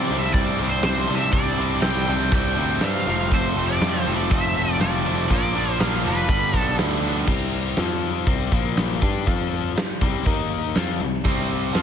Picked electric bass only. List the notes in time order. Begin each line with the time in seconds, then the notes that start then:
0.10 C2
0.34 C2
0.60 C2
0.84 C2
1.09 C2
1.33 C2
1.83 C2
2.08 C2
2.32 C2
2.57 D2
2.82 G2
3.07 F1
3.32 F1
3.56 F1
3.81 F2
4.07 F1
4.31 F1
4.57 F1
4.82 F1
5.07 F1
5.31 A#1
5.81 A#1
6.06 F1
6.29 G1
6.54 B1
6.79 D2
7.28 C2
7.78 F2
8.27 C2
8.52 A#1
9.02 G2
9.27 F2
9.77 muted picked electric bass stroke
10.02 C2
10.26 D#2
10.76 F2
11.00 C2
11.25 C2
11.75 F2